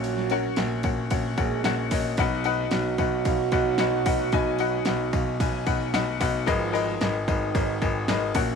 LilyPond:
<<
  \new Staff \with { instrumentName = "Upright piano" } { \time 4/4 \key b \lydian \tempo 4 = 112 <cis' fis' ais' cis'' fis''>8 <cis' fis' ais' cis'' fis''>8 <cis' fis' ais' cis'' fis''>8 <cis' fis' ais' cis'' fis''>8 <cis' fis' ais' cis'' fis''>8 <cis' fis' ais' cis'' fis''>8 <cis' fis' ais' cis'' fis''>8 <cis' fis' ais' cis'' dis''>8 | <dis' fis' b' dis'' fis''>8 <dis' fis' b' dis'' fis''>8 <dis' fis' b' dis'' fis''>8 <dis' fis' b' dis'' fis''>8 <dis' fis' b' dis'' eis''>8 <dis' fis' b' dis'' fis''>8 <dis' fis' b' dis'' fis''>8 <dis' fis' b' dis'' fis''>8 | <dis' fis' b' dis'' gis''>8 <dis' fis' b' dis'' fis''>8 <dis' fis' b' dis'' fis''>8 <dis' fis' b' dis'' eis''>8 <dis' fis' b' dis'' gis''>8 <dis' fis' b' dis'' fis''>8 <dis' fis' b' dis'' fis''>8 <dis' fis' b' dis'' fis''>8 | <dis' gis' ais' b' dis''>8 <dis' gis' ais' b' dis''>8 <dis' gis' ais' b' dis''>8 <dis' gis' ais' b' dis''>8 <dis' gis' ais' b' cis''>8 <dis' gis' ais' b' dis''>8 <dis' gis' ais' b' dis''>8 <cis' fis' ais' cis'' fis''>8 | }
  \new Staff \with { instrumentName = "Upright piano" } { \clef bass \time 4/4 \key b \lydian <ais, ais>4 r2. | <b, fis>4. r2 r8 | <b, fis>4. r2 r8 | <gis, dis>4. r2 <ais, ais>8 | }
  \new Staff \with { instrumentName = "French horn section" } { \time 4/4 \key b \lydian <fis fis'>2 r8 <gis gis'>4 r8 | <fis fis'>1~ | <fis fis'>2.~ <fis fis'>8 r8 | <eis eis'>4 r8 <dis dis'>4. r8 <cis cis'>8 | }
  \new Staff \with { instrumentName = "Grand piano" } { \clef bass \time 4/4 \key b \lydian ais,,4 ais,,8 ais,,8 ais,,8 ais,,8 ais,,8 ais,,8 | b,,4 b,,8 b,,8 b,,8 b,,8 b,,8 b,,8 | b,,4 b,,8 b,,8 b,,8 b,,8 b,,8 b,,8 | gis,,4 gis,,8 gis,,8 gis,,8 gis,,8 gis,,8 ais,,8 | }
  \new DrumStaff \with { instrumentName = "Drums" } \drummode { \time 4/4 cymr16 sn16 cymr8 <cymr sn>8 <bd cymr>8 <bd cymr>8 <bd cymr>8 <cymr sn>8 <hho bd cymr>8 | <bd cymr>8 cymr8 <cymr sn>8 <bd cymr>8 <bd cymr>8 <bd cymr>8 <cymr sn>8 <hho bd cymr>8 | <bd cymr>8 cymr8 <cymr sn>8 <bd cymr>8 <bd cymr>8 <bd cymr>8 <cymr sn>8 <hho bd cymr>8 | <bd cymr>8 cymr8 <cymr sn>8 <bd cymr>8 <bd cymr>8 <bd cymr>8 <cymr sn>8 <hho bd cymr>8 | }
>>